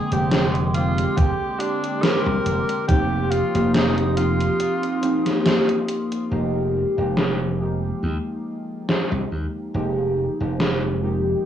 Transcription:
Already playing: D3 G#3 A#3 C4 G#4 G5 C6 D6
0.11 F1 D3 G#3 A#3 C4 G4, closed hi-hat
0.32 snare, closed hi-hat
0.55 closed hi-hat
0.73 D3 G#3 A#3 C4 F4 G4, closed hi-hat
0.98 closed hi-hat
1.17 F1 G4, kick, closed hi-hat
1.59 D4, closed hi-hat
1.84 closed hi-hat
2.02 A#4, snare, closed hi-hat
2.26 C2
2.46 F1, closed hi-hat
2.69 closed hi-hat
2.88 F1 F3 A#3 C4 D#4 G4 F5 C6 D#6, kick, closed hi-hat
3.31 F4, closed hi-hat
3.54 F1 F3 A#3 C4 D#4 G4, closed hi-hat
3.74 D#4, snare, closed hi-hat
3.98 closed hi-hat
4.17 F3 A#3 C4 D#4 F4 G4, closed hi-hat
4.40 closed hi-hat
4.60 closed hi-hat
4.83 closed hi-hat
5.01 F3 A#3 C4 D#4 G4, closed hi-hat
5.26 snare, closed hi-hat
5.46 snare, closed hi-hat
5.69 closed hi-hat
5.89 closed hi-hat
6.12 closed hi-hat
6.30 F1 F3 G#3 A#3 D#4 G4 G5 A#5 D#6
6.97 F1 F3 G#3 A#3 D#4 G4
7.17 snare
7.59 F3 G#3 A#3 D#4 G4
8.03 D#2
8.89 snare
9.12 C2
9.31 D#2
9.73 F1 F3 G#3 A#3 D#4 G4 D6
10.40 F1 F3 G#3 A#3 D#4 G4
10.60 snare
11.01 F3 G#3 A#3 D#4 G4

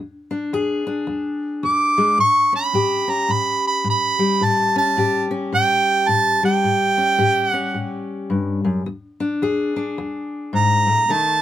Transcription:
Already playing: E2
0.31 D4
0.53 E2 G#4
0.87 D4
1.07 E2
1.63 E2 D6
1.98 G#3
2.18 A2 C#6
2.53 C#4 B5
2.73 A2 G4
3.08 C#4 A#5
3.29 A2 B5
3.67 B5
3.84 A2
3.90 B5
4.19 G3
4.41 A2 A5
4.76 C#4 A5
4.97 A2 G4
5.31 C#4
5.52 A2 G5
6.08 A2 A5
6.43 G3 G5
6.64 A2
6.98 C#4
7.18 A2 G4
7.48 F#5
7.53 C#4
7.74 A2
8.30 G2
8.65 F#2
8.86 E2
9.20 D4
9.42 E2 G#4
9.76 D4
9.98 E2
10.53 G#2 A#5
10.87 A2
11.09 B2 D#3 A3 D#4 A5

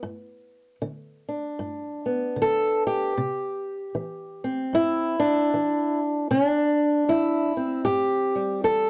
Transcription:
0.03 G2
0.82 D3
1.29 D4
1.59 G2
2.06 B3
2.36 D3
2.42 A4
2.87 G4
3.17 C3
3.95 E3
4.44 C4
4.73 G2 E4
5.20 D4
5.54 E3
6.31 C3 D4
7.09 E3 E4
7.57 C4
7.85 G2 G4
8.35 G3
8.64 E3 A4

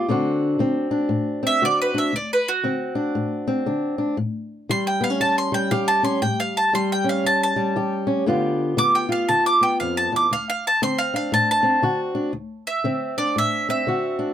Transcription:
Already playing: D5
0.08 D2 D3 C4 D4 F#4
0.59 D3 C4
0.91 D4
1.09 A2
1.43 C4 E5
1.62 D3 F#4 D5
1.82 B4
1.94 D4 E5
2.13 D2 D5
2.33 B4
2.48 F#4
2.63 D3 C4
2.95 D4
3.15 A2
3.47 C4
3.66 D3 D4
3.98 D4
4.17 A2
4.69 E3 G3 C6
4.87 G5
5.01 B3 F5
5.10 C#4
5.20 E2 A5
5.38 C6
5.52 G3 G5
5.71 E3 G4 F5
5.88 A5
6.03 C#4 C6
6.22 A2 G5
6.40 F5
6.57 A5
6.73 E3 G3 C6
6.92 G5
7.04 C#4
7.09 F5
7.24 E2 A5
7.43 A5
7.56 G3
7.76 E3 G4
8.07 C#4
8.26 G2 D3 B3 F4 G4
8.77 D3 B3 D6
8.95 G5
9.09 F4 F5
9.29 D3 A5
9.46 D6
9.61 B3 G5
9.80 F2 F5
9.97 A5
10.12 E2 D6
10.31 D2 F5
10.50 F5
10.67 A5
10.82 D3 C4 C6
10.98 F5
11.14 D4 F5
11.32 A2 A5
11.51 A5
11.63 C4
11.82 D3 F#4
12.15 D4
12.33 D2
12.67 E5
12.84 D3 C4
13.18 D4 D5
13.36 A2 E5
13.69 C4 E5
13.87 D3 F#4
14.19 D4

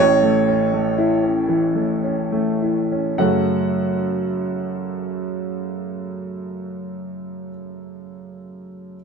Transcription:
Already playing: A1 C#5
0.00 A2
0.23 A3
0.48 C#4
0.74 A3
0.98 E4
1.23 C#4
1.49 E3
1.75 A3
2.04 C#4
2.32 A3
2.62 E4
2.92 C#4
3.18 F#2 C#3 A3 C#4 F#4 A4 F#5

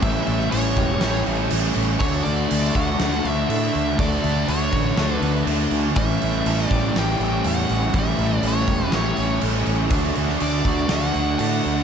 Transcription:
Already playing: A3 C#4
0.02 A1 A2 E3 G3 A3 C#4 G4 E5, kick, crash
0.27 A1 A3, crash
0.51 A1 A2 E3 A3 C#4 C#5, crash
0.76 E1 G4, kick, crash
1.01 A1 A2 E3 G3 A3 C#4 G4, snare, crash
1.26 A1 E3 A3 C#4, crash
1.50 A1 A2 E3 A3, crash
1.76 A1 C#4, crash
1.99 D2 D3 A3 F#4 C#5, kick, crash
2.03 D4 A4
2.24 D2 A3 D5, crash
2.51 D2 D3 A3 D4, crash
2.75 D2 F#4 F#5, kick, crash
2.99 D2 D3 A3 D4 F#4, snare, crash
3.04 A4
3.25 D2 A3 D4, crash
3.31 E5
3.49 A2 D3 A3 D4 E5, crash
3.75 D2, crash
3.98 D2 D3 A3 D4 F#4 A4 D5, kick, crash
4.24 D2 A3, crash
4.48 D2 D3 A3 D4 C#5, crash
4.72 A1 F#4, kick, crash
4.97 D2 D3 A3 D4 F#4 A4, snare, crash
5.15 B4
5.22 D2 A3 D4, crash
5.46 D2 D3 A3, crash
5.50 D4
5.71 D2 C#4, crash
5.96 A1 A2 E3 G3 A3 C#4 G4 E5, kick, crash
6.22 A1 A3, crash
6.46 A1 A2 E3 A3 C#4, crash
6.68 A1 D5, kick, crash
6.72 G4
6.95 A1 A2 E3 G3 A3 C#4 G5, snare, crash
6.99 G4
7.20 A1 E3 A3 C#4, crash
7.44 E2 A2 E3 A3 F#5, crash
7.69 A1 C#4, crash
7.94 A1 A2 E3 G3 A3 C#4 G4, kick, crash
7.99 E5
8.18 A1 A3, crash
8.43 A1 A2 E3 A3 C#4, crash
8.47 C#5
8.68 E1 G4, kick, crash
8.91 A1 A2 E3 G3 A3 C#5, snare, crash
8.96 C#4 G4
9.16 A1 E3 A3 C#4, crash
9.40 A1 A2 E3 A3, crash
9.66 A1 C#4, crash
9.90 D2 D3 A3 D4 F#4, kick, crash
10.15 D2 A3, crash
10.28 snare
10.39 D2 D3 A3 D4 D5, crash
10.65 D2 F#4, kick, crash
10.89 D2 D3 A3 D4 F#4 F#5, snare, crash
11.14 D2 A3 D4, crash
11.39 A2 D3 A3 D4 F#5, crash
11.64 D2, crash

